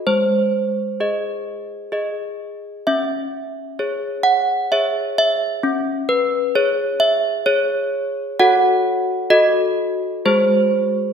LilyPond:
\new Staff \with { instrumentName = "Handbells" } { \time 3/4 \key cis \minor \tempo 4 = 65 << { bis'2~ bis'8 r8 | e''4. fis''8 e''8 e''8~ | e''8 b'8 cis''8 e''8 cis''4 | fis''4 dis''4 bis'4 | } \\ { gis4 <gis' dis''>4 <gis' dis''>4 | cis'4 <gis' cis''>4 <gis' cis''>4 | cis'4 gis'4 gis'4 | <fis' a' cis''>4 <fis' a'>4 <gis fis' gis'>4 | } >> }